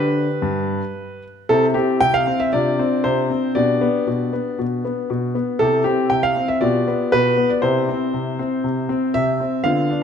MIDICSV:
0, 0, Header, 1, 2, 480
1, 0, Start_track
1, 0, Key_signature, 0, "major"
1, 0, Tempo, 537153
1, 1335, Tempo, 515464
1, 1336, Time_signature, 4, 2, 24, 8
1, 4215, Tempo, 505902
1, 9381, End_track
2, 0, Start_track
2, 0, Title_t, "Grand piano"
2, 0, Program_c, 0, 0
2, 0, Note_on_c, 0, 50, 66
2, 0, Note_on_c, 0, 67, 51
2, 0, Note_on_c, 0, 71, 83
2, 231, Note_off_c, 0, 50, 0
2, 375, Note_on_c, 0, 43, 67
2, 714, Note_off_c, 0, 43, 0
2, 1065, Note_off_c, 0, 67, 0
2, 1094, Note_off_c, 0, 71, 0
2, 1334, Note_on_c, 0, 69, 98
2, 1336, Note_on_c, 0, 64, 45
2, 1338, Note_on_c, 0, 48, 69
2, 1340, Note_on_c, 0, 60, 49
2, 1478, Note_off_c, 0, 69, 0
2, 1560, Note_off_c, 0, 60, 0
2, 1566, Note_on_c, 0, 67, 74
2, 1569, Note_off_c, 0, 48, 0
2, 1574, Note_on_c, 0, 60, 61
2, 1786, Note_off_c, 0, 67, 0
2, 1808, Note_off_c, 0, 60, 0
2, 1811, Note_on_c, 0, 79, 114
2, 1819, Note_on_c, 0, 48, 62
2, 1934, Note_off_c, 0, 79, 0
2, 1935, Note_on_c, 0, 77, 98
2, 2051, Note_off_c, 0, 48, 0
2, 2057, Note_on_c, 0, 60, 55
2, 2176, Note_off_c, 0, 77, 0
2, 2176, Note_on_c, 0, 76, 83
2, 2259, Note_off_c, 0, 64, 0
2, 2289, Note_off_c, 0, 60, 0
2, 2296, Note_off_c, 0, 76, 0
2, 2297, Note_on_c, 0, 74, 87
2, 2302, Note_on_c, 0, 65, 41
2, 2305, Note_on_c, 0, 62, 45
2, 2306, Note_on_c, 0, 48, 65
2, 2533, Note_off_c, 0, 48, 0
2, 2545, Note_on_c, 0, 60, 67
2, 2772, Note_off_c, 0, 60, 0
2, 2774, Note_on_c, 0, 72, 90
2, 2775, Note_off_c, 0, 74, 0
2, 2780, Note_on_c, 0, 48, 68
2, 3008, Note_off_c, 0, 48, 0
2, 3019, Note_on_c, 0, 60, 58
2, 3213, Note_off_c, 0, 72, 0
2, 3216, Note_off_c, 0, 65, 0
2, 3217, Note_off_c, 0, 62, 0
2, 3247, Note_off_c, 0, 60, 0
2, 3249, Note_on_c, 0, 74, 86
2, 3256, Note_on_c, 0, 47, 64
2, 3256, Note_on_c, 0, 62, 42
2, 3259, Note_on_c, 0, 67, 41
2, 3485, Note_off_c, 0, 47, 0
2, 3494, Note_on_c, 0, 59, 69
2, 3725, Note_off_c, 0, 59, 0
2, 3735, Note_on_c, 0, 47, 56
2, 3968, Note_off_c, 0, 47, 0
2, 3976, Note_on_c, 0, 59, 54
2, 4209, Note_off_c, 0, 59, 0
2, 4217, Note_on_c, 0, 47, 52
2, 4253, Note_off_c, 0, 74, 0
2, 4452, Note_off_c, 0, 47, 0
2, 4462, Note_on_c, 0, 59, 54
2, 4692, Note_off_c, 0, 59, 0
2, 4702, Note_on_c, 0, 47, 57
2, 4929, Note_off_c, 0, 47, 0
2, 4937, Note_on_c, 0, 59, 57
2, 5136, Note_off_c, 0, 62, 0
2, 5137, Note_off_c, 0, 67, 0
2, 5165, Note_off_c, 0, 59, 0
2, 5169, Note_on_c, 0, 69, 91
2, 5176, Note_on_c, 0, 48, 63
2, 5176, Note_on_c, 0, 64, 40
2, 5178, Note_on_c, 0, 67, 45
2, 5386, Note_off_c, 0, 69, 0
2, 5391, Note_off_c, 0, 67, 0
2, 5406, Note_off_c, 0, 48, 0
2, 5406, Note_on_c, 0, 67, 78
2, 5411, Note_on_c, 0, 60, 60
2, 5645, Note_off_c, 0, 60, 0
2, 5648, Note_on_c, 0, 79, 91
2, 5650, Note_off_c, 0, 67, 0
2, 5655, Note_on_c, 0, 48, 55
2, 5771, Note_off_c, 0, 79, 0
2, 5775, Note_on_c, 0, 77, 92
2, 5889, Note_off_c, 0, 48, 0
2, 5903, Note_on_c, 0, 60, 49
2, 5992, Note_off_c, 0, 77, 0
2, 6015, Note_on_c, 0, 76, 81
2, 6102, Note_off_c, 0, 64, 0
2, 6132, Note_on_c, 0, 74, 83
2, 6134, Note_off_c, 0, 60, 0
2, 6137, Note_off_c, 0, 76, 0
2, 6139, Note_on_c, 0, 65, 42
2, 6140, Note_on_c, 0, 47, 66
2, 6140, Note_on_c, 0, 67, 44
2, 6373, Note_off_c, 0, 47, 0
2, 6388, Note_on_c, 0, 59, 65
2, 6615, Note_off_c, 0, 74, 0
2, 6616, Note_off_c, 0, 59, 0
2, 6621, Note_on_c, 0, 71, 100
2, 6625, Note_on_c, 0, 47, 62
2, 6852, Note_off_c, 0, 47, 0
2, 6860, Note_on_c, 0, 59, 60
2, 6975, Note_on_c, 0, 74, 64
2, 6977, Note_off_c, 0, 71, 0
2, 7059, Note_off_c, 0, 65, 0
2, 7059, Note_off_c, 0, 67, 0
2, 7091, Note_off_c, 0, 59, 0
2, 7092, Note_on_c, 0, 72, 84
2, 7096, Note_off_c, 0, 74, 0
2, 7099, Note_on_c, 0, 64, 43
2, 7102, Note_on_c, 0, 67, 41
2, 7103, Note_on_c, 0, 48, 69
2, 7335, Note_off_c, 0, 48, 0
2, 7348, Note_on_c, 0, 60, 59
2, 7578, Note_off_c, 0, 60, 0
2, 7584, Note_on_c, 0, 48, 57
2, 7813, Note_off_c, 0, 48, 0
2, 7826, Note_on_c, 0, 60, 58
2, 8054, Note_off_c, 0, 60, 0
2, 8060, Note_on_c, 0, 48, 52
2, 8291, Note_off_c, 0, 48, 0
2, 8299, Note_on_c, 0, 60, 63
2, 8533, Note_off_c, 0, 60, 0
2, 8537, Note_off_c, 0, 72, 0
2, 8537, Note_on_c, 0, 76, 100
2, 8547, Note_on_c, 0, 48, 60
2, 8776, Note_off_c, 0, 48, 0
2, 8784, Note_on_c, 0, 60, 51
2, 8981, Note_off_c, 0, 64, 0
2, 8982, Note_off_c, 0, 67, 0
2, 9006, Note_on_c, 0, 77, 91
2, 9012, Note_off_c, 0, 60, 0
2, 9014, Note_on_c, 0, 50, 63
2, 9014, Note_on_c, 0, 65, 44
2, 9015, Note_on_c, 0, 59, 41
2, 9016, Note_off_c, 0, 76, 0
2, 9246, Note_off_c, 0, 50, 0
2, 9254, Note_on_c, 0, 62, 60
2, 9368, Note_off_c, 0, 77, 0
2, 9381, Note_off_c, 0, 59, 0
2, 9381, Note_off_c, 0, 62, 0
2, 9381, Note_off_c, 0, 65, 0
2, 9381, End_track
0, 0, End_of_file